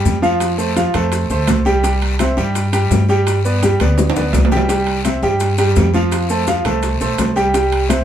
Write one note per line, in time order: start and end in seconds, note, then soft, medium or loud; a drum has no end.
0.00 0.16 G3 medium
0.00 0.16 G4 medium
0.00 0.17 G5 medium
0.05 0.89 F2 medium
0.05 high bongo soft
0.05 low bongo medium
0.05 high conga medium
0.05 short guiro medium
0.05 maracas medium
0.22 0.52 F3 medium
0.22 0.52 F4 medium
0.22 0.52 F5 loud
0.22 high bongo soft
0.22 high conga medium
0.22 short guiro medium
0.22 maracas soft
0.40 high bongo medium
0.40 high conga soft
0.40 high timbale medium
0.40 long guiro medium
0.40 maracas medium
0.58 0.73 A3 medium
0.58 0.73 A4 medium
0.58 0.74 C5 medium
0.58 high conga soft
0.58 maracas medium
0.76 0.91 F3 medium
0.76 0.91 F4 medium
0.76 0.92 F5 medium
0.76 high bongo medium
0.76 high conga medium
0.76 high timbale medium
0.76 short guiro medium
0.76 maracas medium
0.94 1.28 F2 loud
0.94 1.24 A3 medium
0.94 1.24 A4 medium
0.94 1.24 C5 medium
0.94 high bongo soft
0.94 high conga soft
0.94 low conga medium
0.94 high timbale medium
0.94 short guiro medium
0.94 maracas soft
1.12 high bongo medium
1.12 high conga soft
1.12 high timbale medium
1.12 long guiro medium
1.12 maracas medium
1.30 1.47 D2 medium
1.30 1.60 A3 medium
1.30 1.60 A4 medium
1.30 1.60 C5 medium
1.30 high bongo soft
1.30 high conga soft
1.30 maracas medium
1.48 2.31 C2 medium
1.48 high bongo soft
1.48 low bongo medium
1.48 high conga medium
1.48 high timbale loud
1.48 low timbale medium
1.48 short guiro medium
1.48 maracas medium
1.65 1.80 G3 medium
1.65 1.81 G4 medium
1.65 1.81 G5 medium
1.65 high bongo soft
1.65 high conga medium
1.65 short guiro medium
1.65 maracas soft
1.83 2.13 G3 medium
1.83 2.13 G4 medium
1.83 2.13 G5 medium
1.83 high bongo medium
1.83 high conga soft
1.83 high timbale medium
1.83 long guiro medium
1.83 maracas medium
2.02 high conga soft
2.02 high timbale medium
2.19 2.34 C4 medium
2.19 2.34 C5 medium
2.19 2.34 E5 medium
2.19 high bongo medium
2.19 high conga medium
2.19 high timbale loud
2.19 short guiro medium
2.19 maracas medium
2.37 2.87 G2 medium
2.37 2.66 G3 medium
2.37 2.67 G4 medium
2.37 2.67 G5 medium
2.37 high bongo soft
2.37 high conga soft
2.37 short guiro medium
2.37 maracas soft
2.54 high bongo medium
2.54 high conga soft
2.54 high timbale medium
2.54 long guiro medium
2.54 maracas medium
2.73 3.02 G3 medium
2.73 3.02 G4 medium
2.73 3.02 G5 medium
2.73 high bongo soft
2.73 high conga soft
2.73 high timbale medium
2.73 maracas medium
2.91 3.74 G2 medium
2.91 high bongo soft
2.91 low bongo medium
2.91 high conga medium
2.91 low timbale medium
2.91 short guiro medium
2.91 maracas medium
3.09 3.38 G3 medium
3.09 3.38 G4 loud
3.09 3.39 G5 medium
3.09 high bongo soft
3.09 short guiro medium
3.09 maracas soft
3.26 high bongo medium
3.26 high conga soft
3.26 high timbale medium
3.26 long guiro medium
3.26 maracas medium
3.45 3.59 B3 medium
3.45 3.59 B4 medium
3.45 3.60 D5 medium
3.45 high conga soft
3.45 maracas medium
3.62 3.77 G3 medium
3.62 3.77 G4 medium
3.62 3.77 G5 medium
3.62 high bongo medium
3.62 high conga medium
3.62 high timbale medium
3.62 short guiro medium
3.62 maracas medium
3.80 4.13 D2 loud
3.80 4.10 B3 medium
3.80 4.10 B4 medium
3.80 4.10 D5 medium
3.80 high bongo medium
3.80 high conga medium
3.80 high timbale medium
3.80 short guiro medium
3.80 maracas soft
3.98 high bongo medium
3.98 high conga medium
3.98 high timbale medium
3.98 long guiro medium
3.98 maracas medium
4.10 high timbale loud
4.15 4.32 D2 medium
4.15 4.45 B3 medium
4.15 4.46 B4 medium
4.15 4.46 D5 medium
4.15 low bongo loud
4.15 maracas medium
4.21 high timbale medium
4.33 5.17 C2 medium
4.33 low bongo medium
4.33 low conga medium
4.33 low timbale medium
4.33 short guiro medium
4.33 maracas medium
4.45 low timbale loud
4.51 4.66 G3 medium
4.51 4.66 G4 medium
4.51 4.66 G5 medium
4.51 low bongo loud
4.51 low conga medium
4.51 short guiro medium
4.51 maracas soft
4.57 low timbale loud
4.69 4.98 G3 medium
4.69 4.98 G4 medium
4.69 4.98 G5 medium
4.69 high bongo medium
4.69 high conga soft
4.69 high timbale medium
4.69 long guiro medium
4.69 maracas medium
4.87 high conga soft
4.87 high timbale medium
5.04 5.19 C4 medium
5.04 5.20 C5 medium
5.04 5.20 E5 medium
5.04 high bongo medium
5.04 high conga medium
5.04 high timbale medium
5.04 short guiro medium
5.04 maracas medium
5.22 5.72 G2 medium
5.22 5.52 G3 medium
5.22 5.52 G4 medium
5.22 5.52 G5 medium
5.22 high bongo soft
5.22 high conga soft
5.22 short guiro medium
5.22 maracas soft
5.40 high bongo medium
5.40 high conga soft
5.40 high timbale medium
5.40 long guiro medium
5.40 maracas medium
5.58 5.87 G3 medium
5.58 5.88 G4 medium
5.58 5.88 G5 medium
5.58 high bongo soft
5.58 high conga soft
5.58 high timbale medium
5.58 maracas medium
5.76 6.60 F2 medium
5.76 high bongo soft
5.76 low bongo medium
5.76 high conga medium
5.76 low timbale medium
5.76 short guiro medium
5.76 maracas medium
5.94 6.23 F3 medium
5.94 6.23 F4 medium
5.94 6.24 F5 medium
5.94 high bongo soft
5.94 high conga medium
5.94 short guiro medium
5.94 maracas soft
6.11 high bongo medium
6.11 high conga soft
6.11 high timbale medium
6.11 long guiro medium
6.11 maracas medium
6.29 6.44 A3 medium
6.29 6.45 A4 medium
6.29 6.45 C5 medium
6.29 high conga soft
6.29 maracas medium
6.47 6.62 F3 medium
6.47 6.62 F4 medium
6.47 6.62 F5 medium
6.47 high bongo medium
6.47 high conga medium
6.47 high timbale medium
6.47 short guiro medium
6.47 maracas medium
6.65 6.98 C2 medium
6.65 6.95 A3 medium
6.65 6.95 A4 medium
6.65 6.95 C5 medium
6.65 high bongo soft
6.65 high conga soft
6.65 low conga medium
6.65 high timbale medium
6.65 short guiro medium
6.65 maracas soft
6.83 high bongo medium
6.83 high conga soft
6.83 high timbale medium
6.83 long guiro medium
6.83 maracas medium
7.01 7.17 B1 medium
7.01 7.30 A3 medium
7.01 7.30 A4 medium
7.01 7.30 C5 medium
7.01 high bongo soft
7.01 high conga soft
7.01 maracas medium
7.18 8.02 C2 medium
7.18 high bongo soft
7.18 low bongo medium
7.18 high conga medium
7.18 high timbale loud
7.18 low timbale medium
7.18 short guiro medium
7.18 maracas medium
7.36 7.51 G3 medium
7.36 7.51 G4 medium
7.36 7.51 G5 medium
7.36 high bongo soft
7.36 short guiro medium
7.36 maracas soft
7.54 7.83 G3 medium
7.54 7.83 G4 medium
7.54 7.84 G5 medium
7.54 high bongo medium
7.54 high conga soft
7.54 high timbale medium
7.54 long guiro medium
7.54 maracas medium
7.72 high conga soft
7.72 high timbale medium
7.89 8.04 C4 medium
7.89 8.04 C5 medium
7.89 8.04 E5 medium
7.89 high bongo medium
7.89 high conga medium
7.89 high timbale medium
7.89 short guiro medium
7.89 maracas medium